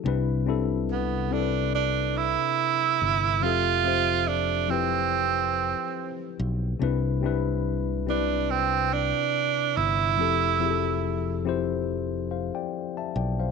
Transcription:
0.04 C2 C3 C4 D4 E4
0.08 B4
0.45 C3 C4 D4 E4
0.50 A4
0.92 B3
1.30 C3 C4 D4 E4
1.34 A4
1.41 B4
1.75 D4
2.17 E4
3.02 G1
3.41 F1 F3 C4 F4 G4 E5
3.46 A4
3.84 F3 C4 G4 C5 E5
4.27 D4
4.68 F3 C4 E4 G4
4.73 B4
6.39 B1
6.80 C2 C3 C4 D4 E4 B4
7.22 C3 C4 D4 E4
7.26 B4
8.06 C3 C4 D4 E4 B4
8.51 C4
8.93 D4
9.77 G1 E4
10.17 F1 F3 C4 E4 G4 A4
10.60 F3 C4 E4 G4
10.64 G#4
10.70 A4
11.45 F3 C4 E4 G4 C5
12.31 C5 F5
12.55 D5 G5
12.97 E5 A5
13.16 B1 D5 G5
13.40 C5 F5

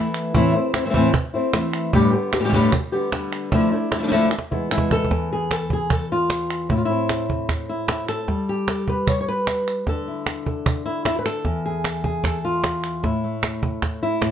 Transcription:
Already playing: E3 A3 B3 E4
0.14 clap
0.34 A2 E3 A3 C4 E4, cajon bass
0.54 A3 C4 E4
0.74 A3 C4 E4, cajon slap, clap
0.85 E3 A3 C4 E4
0.90 E3 A3 C4 E4
0.94 A2 E3 A3 C4 E4, cajon bass
1.13 muted nylon-string guitar stroke, cajon bass, clap
1.34 A3 C4 E4
1.53 E3 A3 C4 E4, cajon slap, clap
1.73 clap
1.93 G2 A2 D3 G3 B3 G4, cajon bass
2.13 D3 G3 B3 G4
2.33 D3 G3 B3 G4, cajon slap, clap
2.40 A2 D3 G3 B3 G4
2.44 A2 D3 G3 B3 G4
2.49 A2 D3 G3 B3 G4, cajon bass
2.53 G2 A2 D3 G3 B3 G4
2.72 muted nylon-string guitar stroke, cajon bass, clap
2.92 D3 G3 B3 G4
3.12 D3 G3 B3 G4, cajon slap, clap
3.33 clap
3.52 D3 F3 A3 D4 E4, cajon bass
3.72 A3 D4 E4
3.92 A3 D4 E4, cajon slap, clap
3.98 F3 A3 D4 E4
4.03 F3 A3 D4 E4
4.07 F3 A3 D4 E4
4.12 D3 F3 A3 D4 E4, cajon slap
4.25 cajon slap
4.31 muted nylon-string guitar stroke, clap
4.38 cajon slap
4.51 E3 G#3 B3 E4, cajon bass
4.71 E3 G#3 B3 E4, clap
4.78 cajon bass
4.91 A4, cajon bass, clap
5.05 cajon bass
5.11 E2, cajon bass, cajon slap
5.31 G#4, cajon slap
5.51 A4, cajon slap, clap
5.70 G#4, cajon bass
5.90 A4, cajon bass, clap
6.12 F4
6.30 cajon slap, clap
6.50 clap
6.69 A2 E4, cajon bass
6.78 F4
6.85 E4
6.90 C4
7.09 cajon slap, clap
7.30 C4, cajon bass
7.49 cajon bass, cajon slap, clap
7.69 E4
7.88 E4, cajon slap, clap
8.09 A4, clap
8.28 G3, cajon bass, cajon slap
8.49 G4
8.68 A4, cajon slap, clap
8.88 B4, cajon bass
9.07 C#5, cajon bass, clap
9.21 C#5
9.28 B4
9.47 cajon slap, clap
9.68 clap
9.87 D3 A4, cajon bass, cajon slap
10.08 E4
10.26 cajon slap, clap
10.46 A4, cajon bass
10.66 cajon bass, clap
10.86 E4
11.05 E4, cajon slap, clap
11.19 B4
11.26 A4, clap
11.45 E2, cajon bass, cajon slap
11.65 G#4, cajon slap
11.84 A4, cajon slap, clap
12.04 G#4, cajon bass
12.24 A4, cajon bass, cajon slap, clap
12.45 F4
12.64 cajon slap, clap
12.84 clap
13.03 A2 E4, cajon bass, cajon slap
13.24 A3
13.43 cajon slap, clap
13.63 cajon bass
13.82 cajon bass, cajon slap, clap
14.03 E4
14.21 A2, cajon slap, clap

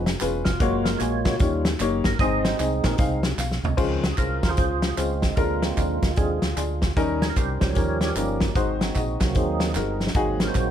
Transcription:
Already playing: F1 D#4
0.06 snare, closed hi-hat, tambourine
0.20 E1 G#3 C#4 F4 B4, clap, closed hi-hat, tambourine
0.45 F1 F4, kick, snare, closed hi-hat, tambourine
0.60 F#1 G#3 A#3 F4 F#4 C#5, kick, closed hi-hat, tambourine
0.84 A#4, snare, closed hi-hat, tambourine
0.99 A#1 A#3 F4 F#4 G#4 C#5, clap, closed hi-hat, tambourine
1.25 A#3 F4 F#4 C#5, kick, snare, closed hi-hat, tambourine
1.39 D#2 D#3 G3 A#3 C#4 D#4 F4 G4 C#5, kick, closed hi-hat, tambourine
1.65 snare, closed hi-hat, tambourine
1.80 F#1 A#3 D#4 G4 C#5, clap, closed hi-hat, tambourine
2.04 G1 A#4, kick, snare, closed hi-hat, tambourine
2.19 G#1 G#2 G#3 C4 D#4 G#4 D#5, kick, closed hi-hat, tambourine
2.43 C5, snare, closed hi-hat, tambourine
2.57 C2 C4 D#4 G#4 D#5, clap, closed hi-hat, tambourine
2.84 A#1 C4 D#4 G#4 A#4, kick, snare, clap, closed hi-hat, tambourine
2.98 C2 G#3 C4 D#4 G#4 F5, kick, closed hi-hat, tambourine
3.23 snare, closed hi-hat, tambourine
3.38 B1 F5, snare, clap, tambourine
3.52 snare
3.63 C2 D#5, floor tom, tambourine
3.77 C#2 C#3 D#3 F3 G#3 C4 C#4 F4 C5, kick, crash, tambourine
4.02 F#4, snare, closed hi-hat, tambourine
4.09 G#4
4.18 C2 G#3 C#4 F4 A#4 C5, kick, clap, closed hi-hat, tambourine
4.43 D#2, kick, snare, closed hi-hat, tambourine
4.49 F4 G#4 C5
4.57 C#2 G#3 C#4 F4 C5, kick, closed hi-hat, tambourine
4.82 snare, closed hi-hat, tambourine
4.89 G#4
4.97 C#2 G#3 C4 C#4 F4 C5, clap, closed hi-hat, tambourine
5.22 kick, snare, closed hi-hat, tambourine
5.29 D#4
5.36 D2 D3 G#3 A#3 C4 D4 F4 A#4, kick, closed hi-hat, tambourine
5.62 snare, closed hi-hat, tambourine
5.77 D#2 G#3 D4 F4 A#4, kick, clap, closed hi-hat, tambourine
6.02 D2, kick, snare, closed hi-hat, tambourine
6.16 D#2 D3 G#3 C4 D4 F4 G#4, kick, closed hi-hat, tambourine
6.42 D2, snare, closed hi-hat, tambourine
6.56 D2 G#3 D4 F4 G#4, clap, closed hi-hat, tambourine
6.82 kick, snare, closed hi-hat, tambourine
6.97 D#2 D#3 G3 C#4 D#4 A#4, kick, closed hi-hat, tambourine
7.22 G#4, snare, closed hi-hat, tambourine
7.30 A#4
7.36 C2 G3 C#4 D#4 G4 A#4 C5, kick, clap, closed hi-hat, tambourine
7.60 C#2 F3 G3 C#4, kick, snare, closed hi-hat, tambourine
7.69 G4 A#4 C#5
7.75 D#2 G3 C#4 D#4 A#4, kick, closed hi-hat, tambourine
8.01 snare, closed hi-hat, tambourine
8.09 A#4
8.15 G1 G3 A#3 C#4 D#4 G4 A#4, clap, closed hi-hat, tambourine
8.40 kick, snare, closed hi-hat, tambourine
8.49 D#4
8.55 G#1 G#2 G#3 C4 D#4 F#4 C5, kick, closed hi-hat, tambourine
8.81 snare, closed hi-hat, tambourine
8.95 A#1 G#3 D#4 F#4 D#5, kick, clap, closed hi-hat, tambourine
9.20 C2 F#3 A#3 C4, kick, snare, clap, closed hi-hat, tambourine
9.34 D#2 G#3 C4 D#4 F#4 G#4 C5, kick, closed hi-hat, tambourine
9.60 snare, closed hi-hat, tambourine
9.75 G1 G#3 D#4 F#4 A#4, snare, clap, tambourine
10.00 snare, tambourine
10.07 snare
10.14 G#1 G#2 F#3 G#3 A#3 C4 D#4 F#4 G#4, kick, closed hi-hat, tambourine
10.40 A#4, snare, closed hi-hat, tambourine
10.48 D#4 F#4 C5
10.55 A#1 G#3 D#4 F#4 C5, kick, clap, closed hi-hat, tambourine

